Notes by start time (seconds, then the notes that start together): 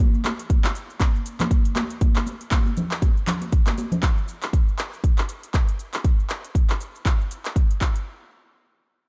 0.00 shaker
0.14 shaker
0.25 clap, muted conga, shaker
0.39 closed hi-hat, shaker
0.50 kick, closed hi-hat, high conga, shaker
0.64 clap, muted conga, shaker
0.75 closed hi-hat, shaker
0.90 shaker
1.00 kick, clap, closed hi-hat, muted conga, high conga, shaker
1.15 shaker
1.26 closed hi-hat, shaker
1.39 clap, closed hi-hat, muted conga, high conga, low conga, shaker
1.51 kick, closed hi-hat, shaker
1.65 closed hi-hat, shaker
1.76 clap, closed hi-hat, muted conga, high conga, shaker
1.90 closed hi-hat, shaker
2.01 kick, closed hi-hat, high conga, shaker
2.16 clap, shaker
2.26 muted conga, shaker
2.41 closed hi-hat, shaker
2.51 kick, clap, closed hi-hat, high conga, shaker
2.66 muted conga, shaker
2.77 closed hi-hat, low conga, shaker
2.91 clap, shaker
3.02 kick, closed hi-hat, muted conga, shaker
3.17 shaker
3.27 clap, closed hi-hat, low conga, shaker
3.42 closed hi-hat, muted conga, shaker
3.52 kick, closed hi-hat, shaker
3.67 clap, closed hi-hat, high conga, shaker
3.78 closed hi-hat, muted conga, shaker
3.92 closed hi-hat, low conga, shaker
4.03 kick, clap, closed hi-hat, shaker
4.18 shaker
4.28 shaker
4.43 clap, closed hi-hat, shaker
4.53 kick, closed hi-hat, shaker
4.68 shaker
4.79 clap, closed hi-hat, shaker
4.93 shaker
5.04 kick, closed hi-hat, shaker
5.18 clap, shaker
5.29 closed hi-hat, shaker
5.43 closed hi-hat, shaker
5.54 kick, clap, closed hi-hat, shaker
5.69 closed hi-hat, shaker
5.79 closed hi-hat, shaker
5.94 clap, closed hi-hat, shaker
6.04 kick, closed hi-hat, shaker
6.19 shaker
6.30 clap, shaker
6.45 closed hi-hat, shaker
6.55 kick, closed hi-hat, shaker
6.70 clap, shaker
6.81 closed hi-hat, shaker
6.96 shaker
7.05 kick, clap, closed hi-hat, shaker
7.21 shaker
7.31 closed hi-hat, shaker
7.45 clap, closed hi-hat, shaker
7.56 kick, closed hi-hat, shaker
7.71 closed hi-hat, shaker
7.81 kick, clap, closed hi-hat, shaker
7.96 closed hi-hat, shaker